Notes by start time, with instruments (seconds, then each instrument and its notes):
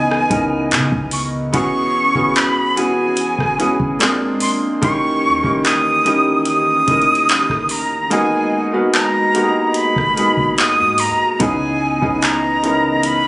Already playing: 808-style bass C#2, analog synth pad C#3 E3 B3 D#5, felt piano B3 C#4 D#4 E4 G#4 B4, flute G#5
0.11 cross-stick
0.30 808-style bass C#2, felt piano B3 C#4 D#4 E4 A#4, kick, closed hi-hat
0.71 808-style bass C#3, clap, closed hi-hat
0.92 808-style bass C#2, kick
1.11 flute C#6, open hi-hat
1.53 808-style bass E1, analog synth pad E3 C#4 F#4 G#4, felt piano B3 C#4 E4 F#4 G#4, flute C#6, kick, closed hi-hat
2.14 808-style bass E1, felt piano B3 C#4 E4 F#4 G#4, kick
2.36 flute B5, clap, closed hi-hat
2.76 felt piano B3 C#4 E4 F#4 G#4, flute G#5, closed hi-hat
3.17 closed hi-hat
3.39 808-style bass E1, kick, cross-stick
3.58 felt piano B3 C#4 E4 F#4 G#4, closed hi-hat
3.80 808-style bass A#1, kick
3.99 analog synth pad G#3 A#3 D4, felt piano A#3 C4 D4 F4 G#4, clap, closed hi-hat
4.40 flute C6, open hi-hat
4.82 808-style bass D#1, analog synth pad D#3 E3 C#4 G4, felt piano A#3 C#4 D#4 E4 G4, flute C#6, kick, closed hi-hat
5.24 808-style bass D#2
5.43 808-style bass D#1, felt piano A#3 C#4 D#4 E4 G4, kick
5.65 flute D#6, clap, closed hi-hat
6.05 felt piano A#3 C#4 D#4 E4 G4, closed hi-hat
6.27 808-style bass A#1
6.45 flute D#6, closed hi-hat
6.58 808-style bass D#1
6.87 808-style bass D#1, felt piano A#3 C#4 D#4 E4 A#4, kick, closed hi-hat
7.02 closed hi-hat
7.15 closed hi-hat
7.29 808-style bass A#1, clap, closed hi-hat
7.50 808-style bass D#1, kick, cross-stick
7.69 flute A#5, open hi-hat
8.10 analog synth pad G#3 F#4 G#4 D#5, felt piano A#3 B3 D#4 F#4 G#4, flute G#5, closed hi-hat
8.72 felt piano B3 D#4 F#4 A#4 B4
8.94 flute A#5, clap, closed hi-hat
9.34 felt piano A#3 B3 D#4 F#4 G4, closed hi-hat
9.43 felt piano G#4
9.74 flute B5, closed hi-hat
9.96 808-style bass G#1, kick, cross-stick
10.16 felt piano A#3 B3 D#4 F#4 G#4, closed hi-hat
10.37 808-style bass G#1, kick
10.58 flute D#6, clap, closed hi-hat
10.79 808-style bass G#2
10.98 flute A#5, open hi-hat
11.09 808-style bass G#1
11.39 808-style bass C#2, analog synth pad C#3 E3 B3 D#5, felt piano B3 C#4 D#4 E4 G#4, flute G#5, kick, closed hi-hat
12.01 808-style bass C#2, felt piano B3 C#4 D#4 E4 G#4, kick
12.22 flute A#5, clap, closed hi-hat
12.63 felt piano B3 C#4 D#4 E4 A#4, closed hi-hat
13.03 flute B5, closed hi-hat